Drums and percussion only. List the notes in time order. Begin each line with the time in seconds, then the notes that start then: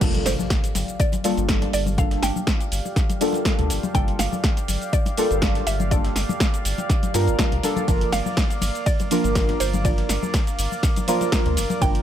0.01 kick, closed hi-hat, crash, low conga, shaker
0.14 closed hi-hat
0.26 snare, closed hi-hat, open hi-hat, muted conga, shaker
0.39 high conga, shaker
0.50 kick, snare, closed hi-hat, shaker
0.64 closed hi-hat, shaker
0.75 open hi-hat, muted conga, high conga, shaker
0.88 closed hi-hat, shaker
1.00 kick, closed hi-hat, shaker
1.12 closed hi-hat, muted conga, high conga, shaker
1.24 closed hi-hat, open hi-hat, shaker
1.37 closed hi-hat, shaker
1.49 kick, snare, closed hi-hat, high conga, shaker
1.62 snare, closed hi-hat, muted conga
1.73 closed hi-hat, open hi-hat, shaker
1.86 closed hi-hat, high conga, shaker
1.98 kick, closed hi-hat, muted conga, low conga, shaker
2.11 snare, closed hi-hat
2.22 snare, closed hi-hat, open hi-hat, shaker
2.36 high conga, shaker
2.47 kick, snare, closed hi-hat, muted conga, shaker
2.60 closed hi-hat, shaker
2.72 closed hi-hat, open hi-hat, shaker
2.85 muted conga, shaker
2.96 kick, snare, closed hi-hat, shaker
3.09 closed hi-hat, high conga, shaker
3.21 closed hi-hat, open hi-hat, shaker
3.32 snare, closed hi-hat, muted conga, shaker
3.45 kick, snare, closed hi-hat, high conga, shaker
3.59 closed hi-hat, low conga
3.70 closed hi-hat, open hi-hat, muted conga, shaker
3.83 closed hi-hat, high conga, shaker
3.95 kick, closed hi-hat, low conga, shaker
4.08 closed hi-hat
4.19 snare, closed hi-hat, open hi-hat, muted conga, shaker
4.32 high conga, shaker
4.44 kick, snare, closed hi-hat, shaker
4.57 closed hi-hat, muted conga, shaker
4.68 open hi-hat, high conga, shaker
4.82 closed hi-hat, shaker
4.93 kick, closed hi-hat, shaker
5.06 closed hi-hat, muted conga, high conga, shaker
5.17 closed hi-hat, open hi-hat, shaker
5.31 closed hi-hat, shaker
5.42 kick, snare, closed hi-hat, muted conga, high conga, shaker
5.55 snare, closed hi-hat
5.67 closed hi-hat, open hi-hat, shaker
5.80 closed hi-hat, high conga, shaker
5.91 kick, closed hi-hat, muted conga, low conga, shaker
6.05 snare, closed hi-hat
6.16 snare, closed hi-hat, open hi-hat, shaker
6.29 muted conga, high conga, shaker
6.40 kick, snare, closed hi-hat, shaker
6.54 closed hi-hat, shaker
6.65 closed hi-hat, open hi-hat, shaker
6.78 closed hi-hat, muted conga, shaker
6.89 kick, snare, closed hi-hat, shaker
7.03 closed hi-hat, high conga, shaker
7.14 snare, closed hi-hat, open hi-hat, muted conga, shaker
7.27 closed hi-hat, shaker
7.38 kick, snare, closed hi-hat, high conga, shaker
7.52 closed hi-hat, low conga
7.63 closed hi-hat, open hi-hat, muted conga, shaker
7.76 closed hi-hat, high conga, shaker
7.88 kick, closed hi-hat, ride, low conga, shaker
8.01 closed hi-hat
8.12 snare, closed hi-hat, open hi-hat, ride, muted conga, shaker
8.26 high conga, shaker
8.37 kick, snare, closed hi-hat, ride, shaker
8.50 closed hi-hat, shaker
8.61 open hi-hat, ride, muted conga, high conga, shaker
8.75 closed hi-hat, shaker
8.86 kick, closed hi-hat, ride, shaker
8.99 closed hi-hat, muted conga, high conga, shaker
9.11 closed hi-hat, open hi-hat, ride, shaker
9.24 closed hi-hat, shaker
9.35 kick, snare, closed hi-hat, ride, high conga, shaker
9.49 snare, closed hi-hat, muted conga
9.60 closed hi-hat, open hi-hat, ride, shaker
9.73 closed hi-hat, high conga, shaker
9.85 kick, closed hi-hat, ride, muted conga, low conga, shaker
9.98 snare, closed hi-hat
10.09 snare, closed hi-hat, open hi-hat, ride, shaker
10.22 high conga, shaker
10.34 kick, snare, closed hi-hat, ride, muted conga, shaker
10.47 closed hi-hat, shaker
10.59 closed hi-hat, open hi-hat, ride, shaker
10.72 muted conga, shaker
10.83 kick, snare, closed hi-hat, ride, shaker
10.96 closed hi-hat, high conga, shaker
11.08 closed hi-hat, open hi-hat, ride, shaker
11.21 snare, closed hi-hat, muted conga, shaker
11.32 kick, snare, closed hi-hat, ride, high conga, shaker
11.46 closed hi-hat, low conga
11.57 closed hi-hat, open hi-hat, ride, muted conga, shaker
11.70 closed hi-hat, high conga, shaker
11.82 kick, closed hi-hat, ride, low conga, shaker
11.95 closed hi-hat